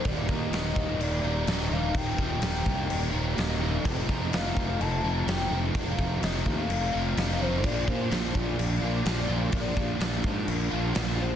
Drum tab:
CC |x-x-x-x-|x-x-x-x-|x-x-x-x-|x-x-x-x-|
SD |--o---o-|--o---o-|--o---o-|--o---o-|
BD |oo-o----|oo-o----|oo-o----|oo-o----|

CC |x-x-x-x-|x-x-x-x-|
SD |--o---o-|--o---o-|
BD |oo-o----|oo-o----|